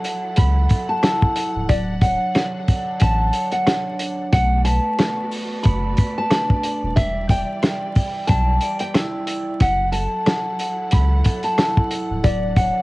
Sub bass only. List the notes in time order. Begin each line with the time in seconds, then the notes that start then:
0.38 C#2
1.55 C#1
1.69 D1
3.02 A1
4.33 B1
5.65 F#1
6.83 D#1
6.97 E1
8.29 B1
9.61 F#1
10.93 C#2
12.10 C#1
12.24 D1